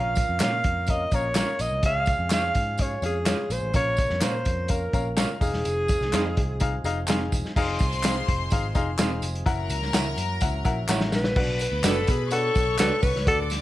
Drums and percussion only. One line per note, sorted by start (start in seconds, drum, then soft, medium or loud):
0.15 kick medium
0.15 closed hi-hat medium
0.15 tambourine medium
0.40 snare loud
0.40 clap medium
0.40 closed hi-hat medium
0.40 tambourine medium
0.64 kick medium
0.64 closed hi-hat medium
0.87 kick medium
0.87 closed hi-hat medium
0.87 tambourine soft
1.11 kick medium
1.11 closed hi-hat medium
1.11 tambourine soft
1.35 snare loud
1.35 clap medium
1.35 closed hi-hat medium
1.35 tambourine medium
1.59 closed hi-hat medium
1.59 tambourine medium
1.83 kick loud
1.83 closed hi-hat loud
2.06 kick loud
2.06 closed hi-hat medium
2.06 tambourine medium
2.30 snare loud
2.30 clap medium
2.30 closed hi-hat medium
2.30 tambourine loud
2.55 kick medium
2.55 closed hi-hat medium
2.55 tambourine soft
2.78 kick medium
2.78 closed hi-hat medium
2.78 tambourine soft
3.02 closed hi-hat medium
3.02 tambourine soft
3.26 snare loud
3.26 clap medium
3.26 closed hi-hat medium
3.26 tambourine medium
3.50 closed hi-hat medium
3.50 tambourine soft
3.73 kick loud
3.73 closed hi-hat medium
3.73 tambourine soft
3.97 kick loud
3.97 closed hi-hat medium
3.97 tambourine medium
4.10 snare soft
4.21 snare loud
4.21 clap medium
4.21 closed hi-hat medium
4.21 tambourine medium
4.45 kick medium
4.45 closed hi-hat medium
4.45 tambourine soft
4.68 kick medium
4.68 closed hi-hat medium
4.68 tambourine soft
4.93 kick medium
4.93 closed hi-hat medium
4.93 tambourine soft
5.17 snare loud
5.17 clap medium
5.17 closed hi-hat medium
5.17 tambourine loud
5.41 kick medium
5.41 open hi-hat medium
5.41 tambourine medium
5.53 snare soft
5.65 closed hi-hat loud
5.65 tambourine soft
5.88 kick loud
5.88 closed hi-hat medium
5.88 tambourine medium
6.02 snare soft
6.13 snare loud
6.13 clap medium
6.13 closed hi-hat medium
6.13 tambourine medium
6.37 kick loud
6.37 closed hi-hat medium
6.60 kick loud
6.60 closed hi-hat medium
6.60 tambourine medium
6.84 closed hi-hat medium
6.84 tambourine soft
7.07 snare loud
7.07 clap loud
7.07 closed hi-hat medium
7.07 tambourine loud
7.32 kick medium
7.32 closed hi-hat medium
7.32 tambourine medium
7.45 snare soft
7.56 kick loud
7.56 crash medium
7.56 tambourine soft
7.79 kick loud
7.79 closed hi-hat medium
7.79 tambourine medium
7.92 closed hi-hat medium
8.03 snare loud
8.03 clap loud
8.03 closed hi-hat loud
8.03 tambourine loud
8.28 kick loud
8.28 closed hi-hat medium
8.50 kick loud
8.50 closed hi-hat medium
8.50 tambourine soft
8.75 kick medium
8.75 closed hi-hat medium
8.75 tambourine soft
8.99 snare loud
8.99 clap loud
8.99 closed hi-hat medium
8.99 tambourine loud
9.22 closed hi-hat medium
9.22 tambourine medium
9.35 closed hi-hat soft
9.46 kick loud
9.46 closed hi-hat medium
9.46 tambourine soft
9.70 closed hi-hat medium
9.70 tambourine medium
9.82 snare soft
9.94 snare loud
9.94 clap loud
9.94 closed hi-hat medium
9.94 tambourine medium
10.17 closed hi-hat medium
10.17 tambourine soft
10.41 kick loud
10.41 closed hi-hat medium
10.41 tambourine medium
10.65 kick medium
10.65 closed hi-hat medium
10.65 tambourine soft
10.89 snare medium
10.89 clap loud
10.89 tambourine loud
11.01 snare medium
11.12 snare medium
11.12 tambourine medium
11.24 snare loud
11.36 kick loud
11.36 crash loud
11.59 closed hi-hat medium
11.59 tambourine medium
11.84 snare loud
11.84 clap loud
11.84 closed hi-hat loud
11.84 tambourine loud
12.07 kick medium
12.07 closed hi-hat loud
12.07 tambourine soft
12.31 closed hi-hat medium
12.31 tambourine medium
12.55 kick medium
12.55 closed hi-hat medium
12.55 tambourine soft
12.79 snare loud
12.79 clap loud
12.79 closed hi-hat loud
12.79 tambourine loud
13.03 kick loud
13.03 open hi-hat medium
13.03 tambourine medium
13.16 snare soft
13.27 kick loud
13.27 closed hi-hat loud
13.50 snare soft
13.50 closed hi-hat medium
13.50 tambourine medium